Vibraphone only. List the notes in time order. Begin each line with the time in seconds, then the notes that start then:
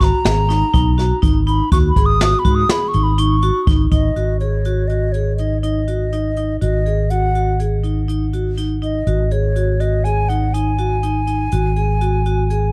0.01 F#4
0.25 G#4
0.49 D#4
0.74 D#4
0.98 F#4
1.22 D#4
1.47 D#4
1.72 F#4
1.97 G#4
2.21 F#4
2.45 F#4
2.69 G#4
2.94 D#4
3.18 D#4
3.43 F#4
3.67 D#4
3.92 D#4
4.16 F#4
4.41 G#4
4.65 F#4
4.90 F#4
5.14 G#4
5.39 D#4
5.63 D#4
5.88 F#4
6.13 D#4
6.37 D#4
6.62 F#4
6.86 G#4
7.11 F#4
7.35 F#4
7.60 G#4
7.84 D#4
8.08 D#4
8.33 F#4
8.58 D#4
8.82 D#4
9.07 F#4
9.32 G#4
9.56 F#4
9.80 F#4
10.05 G#4
10.30 D#4
10.54 D#4
10.78 F#4
11.03 D#4
11.27 D#4
11.53 F#4
11.76 G#4
12.01 F#4
12.26 F#4
12.50 G#4